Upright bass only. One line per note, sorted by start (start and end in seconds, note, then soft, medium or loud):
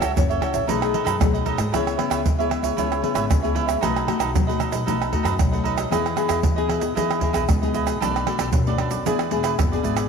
0.02 0.13 C#2 medium
0.16 0.38 F#1 loud
0.54 0.65 A1 medium
0.69 0.91 B1 medium
1.06 1.18 F#2 medium
1.20 1.59 B1 medium
1.58 1.70 G#2 loud
1.73 1.95 C#2 medium
2.10 2.22 C#2 medium
2.25 2.58 C#3 medium
2.63 2.74 C#2 medium
2.77 2.99 C#2 medium
3.15 3.27 G#1 medium
3.30 3.74 C#2 loud
3.83 4.04 B1 medium
4.20 4.31 B1 medium
4.35 4.68 B2 medium
4.72 4.84 B1 medium
4.87 5.09 B1 medium
5.24 5.36 F#2 medium
5.39 5.84 B1 medium
5.92 6.14 E2 medium
6.29 6.41 E2 medium
6.44 6.77 E3 medium
6.82 6.93 E2 medium
6.96 7.18 E2 medium
7.34 7.46 B1 medium
7.49 7.93 C#2 loud
8.01 8.23 B1 medium
8.39 8.50 B1 medium
8.53 8.86 B2 medium
8.91 9.02 B1 medium
9.06 9.28 E2 medium
9.31 9.55 E1 medium
9.59 9.82 F#1 medium
9.84 10.07 G#1 medium